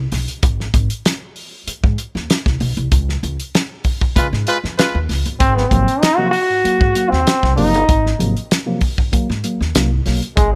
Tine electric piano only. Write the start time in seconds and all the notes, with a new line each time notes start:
5.40 G#2
5.57 F#3 A#3
5.71 C3 F3 F#3 A#3
6.18 C3 F3 F#3 A#3
6.50 G#2
6.64 F#3 A#3
6.81 G#2
6.95 F#3 A#3
7.57 C3 F3 F#3 A#3
7.89 G#2
8.05 F#3 A#3
8.19 C3 F3 F#3 A#3
8.66 C3 F3 F#3 A#3
8.98 G#2
9.12 F#3 A#3
9.29 G#2
9.44 F#3 A#3
9.75 F#3 A#3
9.92 G#2
10.06 F#3 A#3
10.37 G#2